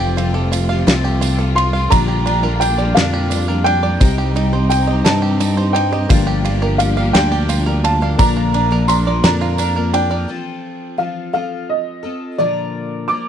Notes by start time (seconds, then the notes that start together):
Already playing: F1 F2 C3 F3 G3 A3 C4 F4 G4 C5 G5
0.00 G4
0.17 A3 C4 F4 G4, ride
0.34 C4 F4 G4 A4
0.52 F4, ride, tambourine
0.69 C4 F4 G4 F5, tambourine
0.87 C2 F3 A3 C4 F4 G4, snare, ride
1.04 G4, tambourine
1.21 A3 C4 F4 G4, ride, tambourine
1.39 C4 F4 G4 A4
1.56 F4 C6, ride
1.73 C4 F4 G4 F5, tambourine
1.90 A#1 A#2 D3 F3 A#3 D4 F4 G4 D5 A#5, kick, ride, tambourine
2.08 G4
2.26 F3 A#3 D4 G4, ride, tambourine
2.43 F3 A#3 D4 G4 A#4
2.60 D4 G5, ride, tambourine
2.78 F3 A#3 D4 G4 D5, tambourine
2.95 F2 A#2 D3 F3 A#3 D4 G4 F5, snare, ride
3.13 G4
3.30 F3 A#3 D4 G4, ride, tambourine
3.48 F3 A#3 D4 G4 A#4
3.64 D4 G5, ride
3.83 F3 A#3 D4 G4 D5
3.99 C2 C3 G3 C4 D#4 G4 D#5, kick, ride, tambourine
4.18 G4
4.35 G3 C4 D#4 G4, ride, tambourine
4.52 C4 D#4 G4 C5
4.70 D#4 G5, ride, tambourine
4.87 C4 D#4 G4 D#5
5.04 G2 C3 G3 C4 D#4 G4 A5, snare, ride
5.22 G4
5.40 G3 C4 D#4 G4, ride, tambourine
5.57 C4 D#4 G4 C5
5.73 D#4 G5, ride
5.92 C4 D#4 G4 D#5
6.08 G1 G2 D3 F3 A#3 D4 F4 G4 D5, kick, ride, tambourine
6.27 G4
6.44 F3 A#3 D4 F4 G4, ride, tambourine
6.62 F3 A#3 D4 G4 A#4
6.78 F4 F5, ride, tambourine
6.97 F3 A#3 D4 G4 F5, tambourine
7.13 D2 G2 D3 F3 A#3 D4 F4 G4 G5, snare, ride
7.32 G4
7.49 F3 A#3 D4 F4 G4, ride, tambourine
7.66 F3 A#3 D4 G4 A#4
7.84 F4 A5, ride
8.01 F3 A#3 D4 G4 F5
8.17 A#1 A#2 D3 F3 A#3 D4 F4 A#4 D5 A#5, kick, ride, tambourine
8.37 F4
8.53 F3 A#3 D4 A#4, ride, tambourine
8.70 F3 A#3 D4 A#4, tambourine
8.88 D4 A#5 C6, ride, tambourine
9.05 F3 A#3 D4 A#4 D5
9.23 F2 A#2 D3 F3 A#3 D4 A#4 A#5, snare, ride, tambourine
9.41 F4, tambourine
9.58 F3 A#3 D4 A#4, ride, tambourine
9.76 F3 A#3 D4 A#4
9.93 D4 G5, ride, tambourine
10.10 F3 A#3 D4 A#4 D5
10.28 F3 C4 F4 A4
10.98 F3 C4 F4 A4 F5
11.33 F3 C4 F4 A4 F5
11.69 D#5
12.03 C4 F4 A4
12.38 A#2 D3 F3 A#3 D4 A#4 D5
13.08 F3 A#3 D4 A#4 D6